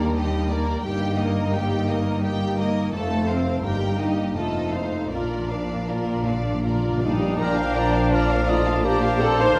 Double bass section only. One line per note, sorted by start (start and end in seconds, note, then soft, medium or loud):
0.00 0.85 D#2 medium
0.85 2.89 G1 medium
2.93 3.62 F1 medium
3.63 4.34 G1 soft
4.35 5.09 F1 soft
5.11 7.19 A#1 soft
7.38 9.52 A#1 soft
9.56 9.59 D2 medium